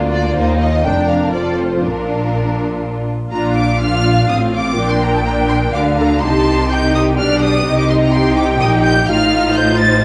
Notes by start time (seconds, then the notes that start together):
Already playing: D2 A#3 D4 F4
0.12 D5
0.36 D#2 D#4 C5
0.60 D#5
0.84 F1 F2 D4 A#4 G5
1.08 F5
1.33 F1 F2 C4 F4 A4 D5
1.58 C5
1.82 A#1 A#2 D4 F4 A#4
3.32 A#1 A#2 D4 F4 F5 A#5
3.57 D6
3.82 D4 F4 F6
4.30 A1 A2 C4 F4 D#6
4.54 D6
4.78 A#1 A#2 D4 A#4 G5
4.90 C6
5.02 A#5
5.14 A5
5.25 D4 A#4 A#5
5.49 C6
5.74 D2 D3 D4 A#4 F5 D6
5.99 A4 A#5
6.22 C2 C3 D#4 G4 A5 C6
6.71 D#4 G4 G5 G6
6.95 D#6
7.19 B1 B2 D4 G4 D5 F6
7.42 D#6
7.66 C2 C3 D#4 G4 D#5
7.79 D6
7.89 C6
8.02 A#5
8.12 D#4 G4 G5 C6
8.37 D6
8.61 A#1 A#2 D#4 G4 D#6
8.85 G6
9.08 A1 A2 D#4 F4 F5 F6
9.55 C5 G6
9.78 A6
10.01 A6